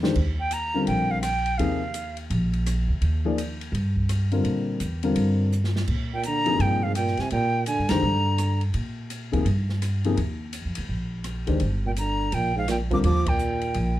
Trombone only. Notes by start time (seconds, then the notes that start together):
6.14 A#2
6.27 D3
6.63 A#2
6.85 G#2
6.96 A#2
7.19 C3
7.32 A#2
7.68 D3
7.90 D3
11.86 A#2
11.99 D3
12.33 A#2
12.55 G#2
12.68 A#2
12.90 F3
13.04 F3
13.28 A#2